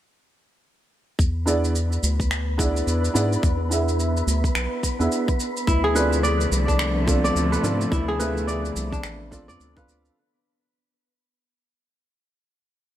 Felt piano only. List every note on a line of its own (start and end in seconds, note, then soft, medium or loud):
1.46 1.72 B3 medium
1.46 1.73 D4 medium
1.46 1.73 E4 medium
1.46 1.73 G#4 medium
1.46 1.73 D5 medium
2.58 3.12 B3 medium
2.58 3.12 D4 medium
2.58 3.12 E4 medium
2.58 3.12 G#4 medium
2.58 3.13 D5 medium
3.14 3.40 B3 medium
3.14 3.41 D4 medium
3.14 3.41 E4 medium
3.14 3.41 G#4 medium
3.14 3.42 D5 loud
3.69 4.95 B3 medium
3.69 4.95 D4 medium
3.69 4.96 E4 medium
3.69 4.96 G#4 medium
3.73 4.97 E5 medium
4.99 5.25 B3 medium
4.99 5.25 D4 medium
4.99 5.25 E4 medium
4.99 5.25 G#4 medium
4.99 5.26 E5 medium
5.94 6.21 C4 medium
5.94 6.21 D4 medium
5.94 6.21 F4 medium
5.94 6.22 A4 medium
5.94 6.22 D5 medium
7.06 7.60 C4 medium
7.06 7.60 D4 medium
7.06 7.61 F4 medium
7.06 7.61 A4 medium
7.06 7.61 D5 loud
7.62 7.89 C4 loud
7.62 7.89 D4 medium
7.62 7.90 F4 medium
7.62 7.90 A4 medium
7.62 7.90 D5 loud
8.18 9.30 F3 medium
8.18 9.30 A3 medium
8.18 9.29 C4 medium
8.18 9.29 D4 medium
8.18 9.31 E5 medium
9.31 9.72 C4 medium
9.31 9.72 D4 medium
9.31 9.72 F4 medium
9.31 9.73 A4 medium
9.31 9.73 D5 loud
9.76 10.14 C4 medium
9.76 10.14 D4 medium
9.76 10.14 F4 medium
9.76 10.15 A4 medium
9.76 10.15 F5 loud